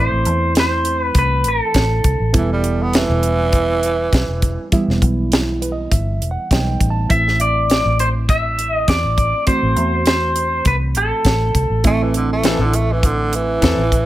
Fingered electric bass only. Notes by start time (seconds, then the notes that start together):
Already playing: A1
0.12 A1
0.26 E2
1.15 C2
1.44 A1
1.74 A1
2.04 C2
2.20 A1
2.34 E1
3.09 E1
4.13 B1
4.28 E1
4.88 E1
5.02 B1
5.91 G1
6.21 E1
6.51 B1
6.80 A1
7.10 A1
7.85 A1
8.88 E2
9.04 A1
9.63 A1
9.76 E2
10.65 C2
10.95 A1
11.25 A1
11.54 C2
11.70 A1
12.58 A1
13.62 E2
13.77 A1